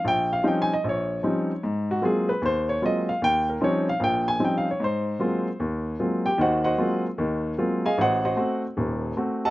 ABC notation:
X:1
M:4/4
L:1/8
Q:"Swing" 1/4=151
K:Ab
V:1 name="Grand piano"
g f (3g a e d4 | z _G A _c =c d e f | g B d f g a (3g f d | c4 z3 [Gg] |
[_Gce_g] [Gceg]2 z4 [Aefa] | [^Fce^f] [Fcef]2 z4 [=Aef=a] |]
V:2 name="Grand piano" clef=bass
B,,,2 [F,G,CDE] z B,,,2 [F,G,CDE] z | A,,2 [_G,A,B,CF] z E,,2 [G,A,B,CF] z | E,,2 [F,G,CDE] z [B,,,B,,]2 [F,G,CDE] z | A,,2 [_G,A,B,CF] z E,,2 [G,A,B,CF] z |
[E,,E,]2 [_G,A,B,CF] z [E,,E,]2 [G,A,B,CF] z | =A,,,2 [=A,C^F] z [E,,,E,,]2 [A,CF] z |]